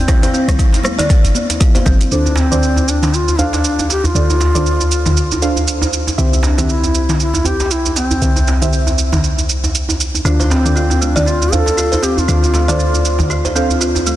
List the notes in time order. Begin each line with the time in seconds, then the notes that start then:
Already playing: C4
0.08 E4, kick, cross-stick, closed hi-hat, mid tom, djembe slap, shaker
0.22 C5, closed hi-hat, djembe tone, shaker
0.34 C4, shaker
0.48 C2, cross-stick, closed hi-hat, mid tom, djembe tone, low conga, shaker
0.59 E4, kick, closed hi-hat, shaker
0.73 closed hi-hat, djembe slap, djembe tone, shaker
0.83 A3, cross-stick, high conga, low conga, shaker
0.98 D5, closed hi-hat, mid tom, djembe tone, djembe bass, shaker
1.09 D4, kick, closed hi-hat, shaker
1.24 G1, closed hi-hat, djembe tone, shaker
1.35 high conga, shaker
1.50 closed hi-hat, djembe tone, shaker
1.60 E4, kick, closed hi-hat, high conga, shaker
1.75 C5, closed hi-hat, djembe tone, high conga, shaker
1.86 G1 C4, kick, low conga, shaker
1.99 closed hi-hat, djembe tone, shaker
2.11 D2 D4 F4 A4 C5 D5, mid tom, shaker
2.26 djembe tone, shaker
2.36 C4, djembe slap, shaker
2.51 D4 F4 A4 C5 D5, mid tom, djembe tone, shaker
2.63 shaker
2.76 djembe tone, shaker
2.88 D4, shaker
3.03 mid tom, djembe slap, djembe tone, shaker
3.14 F4, shaker
3.28 djembe tone, shaker
3.39 D4 F4 A4 C5 F5, djembe bass, shaker
3.53 djembe slap, djembe tone, shaker
3.64 shaker
3.79 djembe tone, shaker
3.90 G4, djembe slap, shaker
4.04 F4, djembe tone, djembe bass, shaker
4.15 D2 D4 F4 A4 C5 D5, mid tom, shaker
4.30 djembe tone, shaker
4.41 djembe slap, shaker
4.55 D4 F4 A4 C5 D5, mid tom, djembe tone, shaker
4.66 shaker
4.80 djembe tone, shaker
4.91 shaker
5.06 mid tom, djembe slap, djembe tone, djembe bass, shaker
5.17 shaker
5.31 djembe tone, shaker
5.42 D4 F4 A4 C5 F5, shaker
5.56 djembe tone, shaker
5.68 shaker
5.82 djembe tone, shaker
5.93 shaker
6.07 djembe tone, shaker
6.18 C2 C4 E4 G4 C5 E5, mid tom, shaker
6.33 djembe tone, shaker
6.43 D4, djembe slap, shaker
6.58 C4 E4 G4 C5 E5, mid tom, djembe tone, shaker
6.69 E4, shaker
6.83 djembe tone, shaker
6.95 shaker
7.09 mid tom, djembe slap, djembe tone, shaker
7.20 E4, shaker
7.34 djembe tone, shaker
7.45 C4 E4 G4 C5 G5, djembe bass, shaker
7.60 djembe slap, djembe tone, shaker
7.71 E4, shaker
7.86 djembe tone, shaker
7.96 C4, djembe slap, shaker
8.11 djembe tone, djembe bass, shaker
8.21 C2 C4 E4 G4 C5 E5, mid tom, shaker
8.36 djembe tone, shaker
8.47 djembe slap, shaker
8.61 C4 E4 G4 C5 E5, mid tom, djembe tone, shaker
8.73 shaker
8.87 djembe tone, shaker
8.98 shaker
9.12 mid tom, djembe slap, djembe tone, djembe bass, shaker
9.24 shaker
9.38 djembe tone, shaker
9.49 shaker
9.64 djembe tone, shaker
9.75 shaker
9.89 djembe tone, shaker
10.00 shaker
10.14 djembe tone, shaker
10.25 D2 D4 F4 A4 C5 D5, mid tom, shaker
10.40 C5, djembe tone, shaker
10.50 C4, djembe slap, shaker
10.65 D4 F4 A4 C5 D5, mid tom, djembe tone, shaker
10.76 F4, shaker
10.90 djembe tone, shaker
11.01 A3 D4, shaker
11.16 D5, mid tom, djembe slap, djembe tone, shaker
11.26 D4 F4, shaker
11.42 djembe tone, shaker
11.52 D4 F4 A4 C5 F5, djembe bass, shaker
11.66 djembe slap, djembe tone, shaker
11.77 F4, shaker
11.92 C5, djembe tone, shaker
12.02 C4 G4, djembe slap, shaker
12.17 F4, djembe tone, djembe bass, shaker
12.28 D2 D4 F4 A4 C5 D5, mid tom, shaker
12.43 djembe tone, shaker
12.54 A3, djembe slap, shaker
12.68 D4 F4 A4 C5 D5, mid tom, djembe tone, shaker
12.79 D4, shaker
12.94 djembe tone, shaker
13.05 shaker
13.19 mid tom, djembe slap, djembe tone, djembe bass, shaker
13.30 F4, shaker
13.45 C5, djembe tone, shaker
13.55 C4 D4 F4 A4 C5 F5, shaker
13.70 djembe tone, shaker
13.81 F4, shaker
13.95 djembe tone, shaker
14.07 A3, shaker